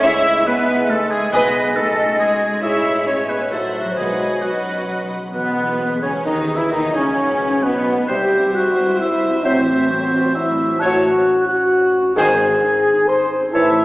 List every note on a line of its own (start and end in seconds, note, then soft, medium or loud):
0.00 0.39 C#2 medium
0.00 1.35 C#3 medium
0.00 2.37 G#3 medium
0.00 0.16 E4 soft
0.00 0.46 E4 medium
0.00 2.45 G#4 medium
0.00 0.23 G#4 medium
0.00 0.31 C#5 soft
0.00 0.23 C#5 medium
0.00 1.05 E5 medium
0.00 1.29 E5 medium
0.00 1.35 E5 soft
0.00 0.48 E5 medium
0.00 0.23 E5 medium
0.00 0.45 E5 medium
0.00 0.48 E5 medium
0.17 0.46 E4 soft
0.32 1.35 C#5 soft
0.46 0.89 B3 medium
0.46 0.74 E4 soft
0.46 0.89 B4 medium
0.46 0.91 B4 medium
0.61 0.86 D#4 soft
0.75 1.35 E4 soft
0.89 1.17 G#3 soft
0.89 1.12 A3 medium
0.89 1.11 A4 medium
0.89 1.12 A4 medium
0.89 1.14 A4 medium
1.05 1.29 A3 soft
1.11 1.33 G#3 medium
1.11 1.32 G#4 medium
1.11 1.33 G#4 medium
1.19 2.18 G#3 soft
1.32 1.69 B1 medium
1.32 1.94 B2 medium
1.32 2.65 B2 medium
1.32 1.76 B3 medium
1.32 1.77 B4 medium
1.32 1.75 B4 medium
1.32 1.53 B4 medium
1.32 1.78 B4 medium
1.32 1.53 D#5 medium
1.32 2.61 D#5 medium
1.32 2.45 D#5 medium
1.32 1.53 G#5 medium
1.48 1.75 D#4 soft
1.75 2.19 A3 medium
1.75 2.04 D#4 soft
1.75 2.18 A4 medium
1.75 2.19 A4 medium
1.75 2.21 A4 medium
1.91 2.15 C#4 soft
2.05 2.64 D#4 soft
2.19 2.47 G#3 soft
2.19 2.63 G#3 medium
2.19 2.61 G#4 medium
2.19 2.62 G#4 medium
2.19 2.50 G#4 soft
2.34 2.58 A3 soft
2.48 3.53 G#3 soft
2.62 3.47 A1 soft
2.62 3.50 A2 soft
2.62 3.48 G#3 soft
2.62 3.07 E4 medium
2.62 3.03 G#4 soft
2.62 3.04 G#4 soft
2.62 3.03 C#5 soft
2.62 3.04 C#5 soft
2.62 3.50 C#5 soft
2.62 3.03 E5 soft
2.62 3.06 E5 medium
2.62 3.09 E5 medium
2.62 3.06 E5 medium
2.77 3.06 E4 soft
2.92 3.53 C#5 soft
3.06 3.30 C#4 medium
3.06 3.35 E4 soft
3.06 3.50 G#4 soft
3.06 3.51 G#4 soft
3.06 3.28 C#5 soft
3.06 3.31 C#5 medium
3.06 3.29 C#5 soft
3.06 3.51 C#5 soft
3.06 3.30 C#5 soft
3.06 3.50 E5 soft
3.22 3.47 D#4 soft
3.28 3.52 B3 medium
3.28 3.51 B4 soft
3.28 3.54 B4 soft
3.28 3.51 B4 soft
3.28 3.52 D#5 soft
3.37 3.80 E4 soft
3.51 3.96 A1 soft
3.51 3.98 A2 soft
3.51 5.07 F#3 soft
3.51 3.81 A3 soft
3.51 3.96 F#4 soft
3.51 3.80 A4 soft
3.51 3.82 A4 soft
3.51 3.81 A4 soft
3.51 3.97 C5 soft
3.51 3.96 E5 soft
3.51 3.97 E5 soft
3.51 3.96 E5 soft
3.51 3.95 F#5 soft
3.66 4.87 F#3 soft
3.81 3.89 F#3 soft
3.81 3.98 E4 soft
3.81 3.96 F#4 soft
3.81 3.88 F#4 soft
3.81 3.96 F#4 soft
3.81 3.98 C5 soft
3.96 5.14 B1 soft
3.96 5.35 B2 soft
3.96 4.61 B2 soft
3.96 4.42 G#3 soft
3.96 4.42 F#4 soft
3.96 4.43 G#4 soft
3.96 4.42 G#4 soft
3.96 4.46 G#4 soft
3.96 4.42 B4 soft
3.96 4.42 D#5 soft
3.96 5.08 D#5 soft
3.96 4.42 D#5 soft
3.96 4.41 F#5 soft
4.12 4.41 D#4 soft
4.27 5.79 B4 soft
4.42 5.11 F#3 soft
4.42 4.71 D#4 soft
4.42 5.10 F#4 soft
4.42 5.11 F#4 soft
4.42 5.09 F#4 soft
4.42 5.13 F#4 soft
4.42 5.11 F#4 soft
4.42 5.13 B4 soft
4.42 5.13 D#5 soft
4.42 5.10 D#5 soft
4.42 5.13 F#5 soft
4.58 4.83 C#4 soft
4.73 5.35 D#4 soft
4.88 5.17 F#3 soft
5.02 5.28 G#3 soft
5.18 5.35 F#3 soft
5.32 5.99 B1 soft
5.32 5.99 B2 soft
5.32 6.74 E3 soft
5.32 5.99 B3 medium
5.32 5.99 B3 soft
5.32 5.99 B3 medium
5.32 6.05 B3 soft
5.32 5.99 B4 soft
5.32 5.99 B4 medium
5.49 6.74 G#3 soft
5.65 6.56 E4 soft
5.81 6.10 B4 soft
5.96 6.25 G#4 soft
6.03 6.11 C#2 soft
6.03 6.13 C#3 soft
6.03 6.12 C#3 soft
6.03 6.26 C#4 soft
6.03 6.28 C#4 medium
6.03 6.14 C#4 medium
6.03 6.11 C#4 soft
6.03 6.13 C#5 soft
6.11 6.40 B4 soft
6.26 6.56 D#2 medium
6.26 6.40 D#3 soft
6.26 6.56 D#3 medium
6.26 6.56 D#4 medium
6.26 6.57 D#4 medium
6.26 6.34 D#4 soft
6.26 6.40 D#4 medium
6.26 6.34 D#4 soft
6.26 6.57 D#4 medium
6.26 6.74 G#4 soft
6.26 6.58 D#5 soft
6.41 7.32 B4 soft
6.56 6.72 E3 medium
6.56 6.71 E3 soft
6.56 6.72 E4 soft
6.56 6.63 E4 soft
6.56 6.72 E4 soft
6.56 6.74 E4 soft
6.56 6.63 E4 soft
6.56 6.71 E4 medium
6.56 6.72 E4 medium
6.56 6.73 E5 soft
6.71 6.94 D#2 medium
6.71 8.12 B2 soft
6.71 6.97 D#3 medium
6.71 6.94 D#3 medium
6.71 6.97 D#4 medium
6.71 6.95 D#4 medium
6.71 6.94 D#5 medium
6.87 8.11 F#3 soft
6.94 7.62 C#2 soft
6.94 7.63 C#3 medium
6.94 7.65 C#3 medium
6.94 7.62 C#4 medium
6.94 7.64 C#4 medium
6.94 7.63 C#4 soft
6.94 7.66 C#4 medium
6.94 7.64 C#4 medium
6.94 7.64 C#5 soft
7.03 7.93 A3 soft
7.18 7.48 D#4 soft
7.33 7.63 B4 soft
7.49 7.78 D#4 soft
7.63 8.09 B1 medium
7.63 8.09 B2 medium
7.63 8.10 B2 medium
7.63 8.08 B3 medium
7.63 8.10 B3 medium
7.63 8.08 B3 medium
7.63 8.09 B3 medium
7.63 8.09 B4 medium
7.63 8.11 B4 soft
7.63 8.10 B4 medium
7.79 8.11 D#4 soft
7.94 8.11 A3 soft
8.08 9.41 C2 soft
8.08 9.46 C3 soft
8.08 9.41 C3 medium
8.08 9.41 G3 soft
8.08 8.26 G3 soft
8.08 8.53 G4 medium
8.08 8.24 C5 soft
8.08 10.77 C5 medium
8.08 10.77 E5 soft
8.08 8.31 E5 medium
8.08 8.54 G5 medium
8.25 9.47 G3 soft
8.39 9.29 C4 soft
8.54 8.84 E4 soft
8.54 8.99 F#4 medium
8.54 8.99 F#5 medium
8.70 8.99 E5 soft
8.85 9.14 E4 soft
8.98 9.44 E4 medium
8.98 10.04 E5 soft
8.98 9.44 E5 medium
9.15 10.83 E4 soft
9.30 9.74 C4 soft
9.43 10.78 A1 medium
9.43 10.78 A2 medium
9.43 10.79 A2 soft
9.43 10.76 F#3 medium
9.43 9.61 F#3 soft
9.43 9.90 C4 medium
9.43 9.89 C5 medium
9.43 9.61 C5 medium
9.43 9.66 E5 soft
9.60 10.83 E3 soft
9.75 10.64 C4 soft
9.90 10.35 C4 medium
9.90 10.19 F#4 soft
9.90 10.34 C5 medium
10.05 10.34 E5 soft
10.20 10.49 F#4 soft
10.35 10.81 E4 medium
10.35 10.82 E5 medium
10.35 10.83 E5 soft
10.50 11.25 F#4 soft
10.66 10.83 C4 soft
10.79 11.18 A1 medium
10.79 12.19 A2 medium
10.79 11.19 A2 medium
10.79 11.02 F#3 medium
10.79 10.97 F#3 medium
10.79 11.47 F#4 medium
10.79 11.02 C#5 medium
10.79 10.97 C#5 medium
10.79 11.03 C#5 medium
10.79 11.47 F#5 medium
10.79 11.02 A5 medium
10.96 12.19 A3 soft
11.11 12.01 C#4 soft
11.26 11.55 F#4 medium
11.41 11.70 C#5 soft
11.48 12.16 F#4 medium
11.48 11.92 F#5 medium
11.56 11.85 F#4 soft
11.71 12.19 C#5 medium
11.87 12.19 F#4 soft
12.02 12.19 C#4 soft
12.16 12.55 G#1 medium
12.16 13.56 G#2 medium
12.16 12.55 G#2 medium
12.16 12.38 D#3 medium
12.16 12.33 D#3 medium
12.16 13.06 G#4 medium
12.16 12.39 G#4 medium
12.16 12.39 C5 medium
12.16 12.34 C5 medium
12.16 12.38 G#5 medium
12.16 13.05 G#5 medium
12.33 13.57 D#3 soft
12.48 13.38 C4 soft
12.63 12.92 D#4 medium
12.79 13.08 D#5 medium
12.94 13.23 D#4 soft
13.07 13.31 C5 medium
13.07 13.57 D#5 soft
13.07 13.31 C6 medium
13.24 13.57 D#4 soft
13.40 13.57 C4 soft
13.53 13.85 A1 medium
13.53 13.85 A2 medium
13.53 13.71 E3 medium
13.53 13.85 A3 medium
13.53 13.85 E4 medium
13.53 13.85 C#5 medium
13.53 13.71 C#5 medium
13.53 13.85 E5 medium
13.53 13.76 A5 medium
13.70 13.85 E3 soft